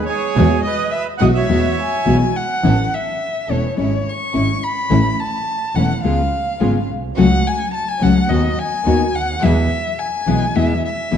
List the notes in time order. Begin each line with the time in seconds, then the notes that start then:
0.06 G#4 C#5
0.36 E2 B2 E3 G#3 B3 E4 F#4
0.62 D#5
0.67 B4
0.91 E5
0.95 B4
1.18 B1 B2 E3 G#3 B3 E4 F#4 D#5 F#5
1.34 C#5 E5
1.48 E2 B2 E3 G#3 B3 E4 F#4
1.81 G#5
2.05 B1 B2 E3 G#3 B3 E4 F#4
2.36 F#5
2.63 A1 E3 B3 C#4 E4 A4
2.94 E5
3.48 E1 E3 B3 C#4 E4 A4 C#5
3.77 G#1 G#3 C#4 E4 C#5
4.09 C#6
4.34 G#1 G#3 C#4 E4
4.63 B5
4.90 A1 E3 A3 C#4 E4
5.20 A5
5.75 E1 E3 A3 C#4 E4 F#5
6.03 C#2 C#3 G#3 B3 C#4 F4 G#4 F5
6.59 G#1 C#3 G#3 B3 C#4 F4 G#4
6.89 B1
7.15 C#2 C#3 F#3 A3 C#4 F#4 F#5
7.47 G#5
7.74 A5
7.88 G#5
8.00 C#2 C#3 F#3 A3 C#4 F#4 F#5
8.28 D#2 D#3 B3 D#4 F#4 D#5
8.59 G#5
8.84 D#2 D#3 B3 D#4 F#4
9.14 D2 F#5
9.42 E2 B2 E3 G#3 B3 E4 G#4 E5
9.99 G#5
10.26 B1 B2 E3 G#3 B3 E4 G#4
10.55 E2 B2 E3 G#3 B3 E4 G#4 E5
10.85 E5
11.11 B1 B2 E3 G#3 B3 E4 G#4